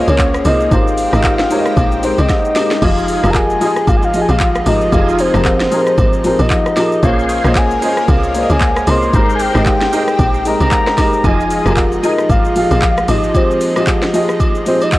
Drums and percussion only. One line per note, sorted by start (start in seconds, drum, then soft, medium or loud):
0.08 high agogo medium
0.08 shaker medium
0.18 kick medium
0.18 clap loud
0.18 low woodblock medium
0.18 shaker medium
0.34 cross-stick loud
0.34 shaker medium
0.45 open hi-hat medium
0.45 high agogo medium
0.45 shaker medium
0.60 shaker medium
0.71 kick loud
0.71 high agogo medium
0.71 shaker medium
0.88 shaker medium
0.98 open hi-hat medium
0.98 shaker loud
1.13 cross-stick medium
1.13 high agogo medium
1.13 shaker medium
1.24 kick medium
1.24 clap medium
1.24 low woodblock medium
1.24 shaker medium
1.39 snare medium
1.39 shaker medium
1.51 open hi-hat medium
1.51 shaker loud
1.66 cross-stick medium
1.66 shaker medium
1.77 kick loud
1.77 high agogo medium
1.77 shaker medium
1.92 shaker medium
2.03 open hi-hat medium
2.03 shaker loud
2.18 high agogo medium
2.18 shaker medium
2.29 kick medium
2.29 snare medium
2.29 low woodblock medium
2.29 shaker medium
2.45 shaker medium
2.56 snare loud
2.56 open hi-hat medium
2.56 high agogo medium
2.56 shaker medium
2.71 snare loud
2.71 shaker medium
2.82 kick loud
2.82 crash medium
2.82 high agogo medium
2.98 shaker medium
3.08 open hi-hat medium
3.08 shaker loud
3.24 cross-stick medium
3.24 high agogo medium
3.24 shaker medium
3.34 kick medium
3.34 clap medium
3.34 low woodblock medium
3.34 shaker medium
3.50 shaker medium
3.61 open hi-hat medium
3.61 shaker loud
3.76 cross-stick medium
3.76 shaker medium
3.87 kick loud
3.87 high agogo medium
3.87 shaker medium
4.02 shaker medium
4.14 open hi-hat medium
4.14 shaker medium
4.29 high agogo medium
4.29 shaker medium
4.40 kick medium
4.40 clap loud
4.40 low woodblock medium
4.40 shaker medium
4.55 cross-stick loud
4.55 shaker medium
4.66 open hi-hat medium
4.66 high agogo medium
4.66 shaker medium
4.81 shaker medium
4.92 kick loud
4.92 high agogo medium
4.92 shaker medium
5.09 shaker medium
5.19 open hi-hat medium
5.19 shaker loud
5.34 cross-stick loud
5.34 high agogo medium
5.34 shaker medium
5.45 kick medium
5.45 clap loud
5.45 low woodblock medium
5.45 shaker medium
5.60 snare medium
5.60 shaker medium
5.72 open hi-hat medium
5.72 shaker loud
5.87 cross-stick medium
5.87 shaker medium
5.98 kick loud
5.98 high agogo medium
5.98 shaker medium
6.13 shaker medium
6.24 open hi-hat medium
6.24 shaker medium
6.39 high agogo medium
6.39 shaker medium
6.50 kick medium
6.50 clap loud
6.50 low woodblock medium
6.50 shaker medium
6.66 cross-stick loud
6.66 shaker medium
6.76 snare medium
6.76 open hi-hat medium
6.76 high agogo medium
6.76 shaker medium
6.92 shaker medium
7.03 kick loud
7.03 high agogo medium
7.03 shaker medium
7.19 shaker medium
7.29 open hi-hat medium
7.29 shaker loud
7.44 cross-stick medium
7.44 high agogo medium
7.44 shaker medium
7.55 kick medium
7.55 clap loud
7.55 low woodblock medium
7.55 shaker medium
7.71 shaker medium
7.82 open hi-hat medium
7.82 shaker loud
7.97 cross-stick medium
7.97 shaker medium
8.08 kick loud
8.08 high agogo medium
8.08 shaker medium
8.23 shaker medium
8.35 open hi-hat medium
8.35 shaker loud
8.50 high agogo medium
8.50 shaker medium
8.60 kick medium
8.60 clap loud
8.60 low woodblock medium
8.60 shaker medium
8.76 cross-stick loud
8.76 shaker medium
8.87 open hi-hat medium
8.87 high agogo medium
8.87 shaker medium
9.02 shaker medium
9.13 kick loud
9.13 high agogo medium
9.13 shaker medium
9.29 shaker medium
9.40 open hi-hat medium
9.40 shaker loud
9.55 cross-stick medium
9.55 high agogo medium
9.55 shaker medium
9.66 kick medium
9.66 clap medium
9.66 low woodblock medium
9.66 shaker medium
9.81 snare medium
9.81 shaker medium
9.93 open hi-hat medium
9.93 shaker loud
10.08 cross-stick medium
10.08 shaker medium
10.19 kick loud
10.19 high agogo medium
10.19 shaker medium
10.34 shaker medium
10.45 open hi-hat medium
10.45 shaker medium
10.60 high agogo medium
10.60 shaker medium
10.71 kick medium
10.71 clap loud
10.71 low woodblock medium
10.71 shaker medium
10.87 cross-stick loud
10.87 snare medium
10.87 shaker medium
10.98 kick loud
10.98 cross-stick medium
10.98 snare medium
10.98 open hi-hat medium
10.98 high agogo medium
10.98 shaker medium
11.13 shaker medium
11.24 kick loud
11.24 high agogo medium
11.24 shaker medium
11.40 shaker medium
11.50 open hi-hat medium
11.50 shaker loud
11.66 cross-stick medium
11.66 high agogo medium
11.66 shaker medium
11.77 kick medium
11.77 clap medium
11.77 low woodblock medium
11.77 shaker medium
11.92 shaker medium
12.04 open hi-hat medium
12.04 shaker loud
12.18 cross-stick medium
12.18 shaker medium
12.30 kick loud
12.30 high agogo medium
12.30 shaker medium
12.45 shaker medium
12.56 open hi-hat medium
12.56 shaker loud
12.71 high agogo medium
12.71 shaker medium
12.82 kick medium
12.82 clap loud
12.82 low woodblock medium
12.82 shaker medium
12.98 cross-stick loud
12.98 shaker medium
13.08 open hi-hat medium
13.08 high agogo medium
13.08 shaker medium
13.24 shaker medium
13.35 kick loud
13.35 high agogo medium
13.35 shaker medium
13.51 shaker medium
13.61 open hi-hat medium
13.61 shaker loud
13.76 cross-stick medium
13.76 high agogo medium
13.76 shaker medium
13.87 kick medium
13.87 clap medium
13.87 low woodblock medium
13.87 shaker medium
14.02 snare medium
14.02 shaker medium
14.14 open hi-hat medium
14.14 shaker loud
14.29 cross-stick medium
14.29 shaker medium
14.40 kick loud
14.40 high agogo medium
14.40 shaker medium
14.55 shaker medium
14.66 open hi-hat medium
14.66 shaker medium
14.81 high agogo medium
14.81 shaker medium
14.92 kick medium
14.92 clap loud
14.92 low woodblock medium
14.92 shaker medium